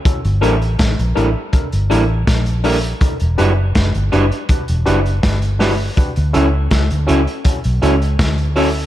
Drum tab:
HH |xxxxxxx-xxx-xxox|xxx-xxxxxxxxxxo-|xxx-xxxxxxxxxxo-|
SD |----o-------o---|----o-------o-o-|----o-------o---|
BD |o---o---o---o---|o---o---o---o---|o---o---o---o---|